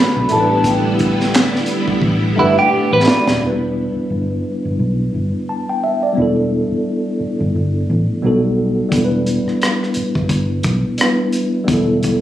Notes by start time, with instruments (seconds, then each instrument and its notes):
Already playing: string machine D3 A3 B3, tine electric piano A3 C#4 D4 F#4 B4, vibraphone B5
0.17 fingered electric bass B1
0.29 fingered electric bass A1, string machine D3 G3 B3 E4, tine electric piano A3 D4 E4 G4, vibraphone A5, closed hi-hat
0.33 tine electric piano A4
0.40 tine electric piano B4
0.64 vibraphone G5, kick, closed hi-hat
0.99 kick, closed hi-hat
1.20 snare
1.34 snare, clap, closed hi-hat
1.56 snare
1.66 closed hi-hat
1.88 kick
2.02 fingered electric bass A1, kick
2.36 fingered electric bass G1, tine electric piano A3 D4 G4 F#5, clean electric guitar E4
2.40 tine electric piano B4
2.59 clean electric guitar G4
2.73 muted fingered electric bass stroke
2.93 fingered electric bass A1, clean electric guitar B4
3.04 tine electric piano A3 D4 F#4 G4, snare
3.09 tine electric piano D5
3.27 fingered electric bass D#1, snare
3.37 tine electric piano G3 B3
3.42 fingered electric bass E1, tine electric piano D4 E4
3.46 tine electric piano B4
3.96 muted fingered electric bass stroke
4.10 fingered electric bass G1
4.65 fingered electric bass G1
4.79 fingered electric bass B1
5.14 fingered electric bass G1
5.49 tine electric piano A5
5.69 tine electric piano G5
5.84 tine electric piano E5
6.03 tine electric piano D5
6.13 tine electric piano G3 B3
6.17 fingered electric bass E1, tine electric piano D4 E4
6.22 tine electric piano A4
6.72 muted fingered electric bass stroke
7.20 muted fingered electric bass stroke
7.40 fingered electric bass G1
7.55 fingered electric bass G1
7.90 fingered electric bass A1
8.22 fingered electric bass B1, tine electric piano G3 B3 D#4 F#4
8.26 tine electric piano A4
8.89 fingered electric bass E1, tine electric piano G3 B3, kick, closed hi-hat
8.93 tine electric piano D4 E4
8.98 tine electric piano A4
9.04 tine electric piano B4
9.26 closed hi-hat
9.47 muted fingered electric bass stroke, cross-stick
9.62 cross-stick, closed hi-hat
9.83 cross-stick
9.94 muted fingered electric bass stroke, closed hi-hat
10.15 fingered electric bass G1, kick
10.29 fingered electric bass G1, kick, closed hi-hat
10.63 fingered electric bass B1, kick, closed hi-hat
10.98 tine electric piano G3 B3 D4, cross-stick, closed hi-hat
11.02 tine electric piano E4 B4
11.32 closed hi-hat
11.64 tine electric piano G3 B3, kick, closed hi-hat
11.69 fingered electric bass E1, tine electric piano D3 E4
11.73 tine electric piano A4
12.03 kick, closed hi-hat